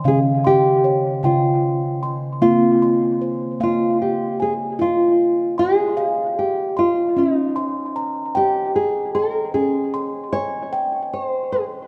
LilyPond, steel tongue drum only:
<<
  \new Staff \with { instrumentName = "Steel tongue drum" } { \time 6/8 \key f \minor \tempo 4. = 51 << { <f'' c'''>8 c'''8 des''4. c'''8~ | c'''8 c'''8 c''4. aes''8~ | aes''8 r8 c'''4. c'''8~ | c'''8 c'''8 bes''4. c'''8~ |
c'''8 c'''8 aes''4. c'''8 | } \\ { des'4 r8 g''4 r8 | c'4 r8 f''4 r8 | f'4 r8 f''4 r8 | des'4 r8 g''4 r8 |
des'4 r8 g''4 r8 | } >> }
  \new Staff \with { instrumentName = "Steel tongue drum" } { \clef bass \time 6/8 \key f \minor des4. des4. | bes4. bes4. | r2. | r2. |
r2. | }
>>